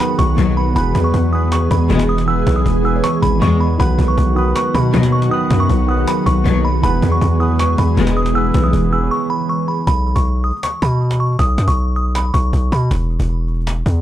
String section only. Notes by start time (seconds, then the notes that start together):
0.38 D#2 B2 F#3
1.90 E2 B2 G#3
3.42 E2 B2 G#3
4.94 D#2 B2 F#3
6.45 D#2 B2 F#3
7.97 E2 B2 G#3